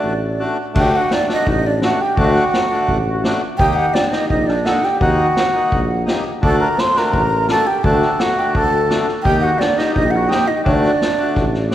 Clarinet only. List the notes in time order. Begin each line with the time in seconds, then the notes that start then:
0.76 G4
0.94 F#4
1.13 D4
1.18 D#4
1.26 D4
1.47 D#4
1.65 D4
1.83 F#4
2.01 G4
2.15 F#4
2.32 F#4
3.08 F#4
3.60 G4
3.96 D4
4.12 D#4
4.30 D#4
4.49 D4
4.83 G4
5.02 F#4
6.43 A4
6.61 A#4
6.78 C5
6.98 A#4
7.50 A4
7.67 G4
7.84 A4
8.20 F#4
8.56 A4
9.26 G4
9.43 F#4
9.61 D4
9.80 D#4
9.98 D#4
10.16 F#4
10.32 G4
10.49 D#4
10.69 D4